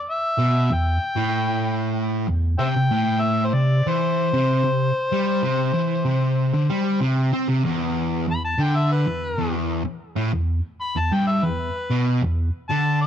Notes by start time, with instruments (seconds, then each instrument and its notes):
0.10 harmonica E5
0.39 distorted electric guitar B2
0.70 distorted electric guitar E2, harmonica G5
1.16 distorted electric guitar A2
2.28 distorted electric guitar E2
2.59 distorted electric guitar C3, harmonica C5 E5 G5
2.76 distorted electric guitar C3
2.91 distorted electric guitar A2
3.21 harmonica E5
3.45 harmonica C5
3.54 distorted electric guitar C3, harmonica D5
3.87 distorted electric guitar E3, harmonica C5
4.33 distorted electric guitar C3
4.64 distorted electric guitar C3
5.12 distorted electric guitar G3
5.42 distorted electric guitar C3
5.74 distorted electric guitar E3
6.06 distorted electric guitar C3
6.54 distorted electric guitar D3
6.70 distorted electric guitar G3
7.01 distorted electric guitar C3
7.33 distorted electric guitar C4
7.49 distorted electric guitar C3
7.64 distorted electric guitar E2
8.28 distorted electric guitar E2, harmonica B5
8.44 harmonica A5
8.58 distorted electric guitar D3, harmonica G5
8.76 harmonica E5
8.92 harmonica B4
9.06 distorted electric guitar E2
9.38 distorted electric guitar E2
9.85 muted distorted electric guitar stroke
10.16 distorted electric guitar A2
10.33 distorted electric guitar E2
10.81 harmonica B5
10.96 distorted electric guitar E2, harmonica A5
11.13 distorted electric guitar G2, harmonica G5
11.27 harmonica E5
11.44 distorted electric guitar E2, harmonica B4
11.90 distorted electric guitar B2
12.22 distorted electric guitar E2
12.69 distorted electric guitar D3, harmonica A5
13.02 harmonica E5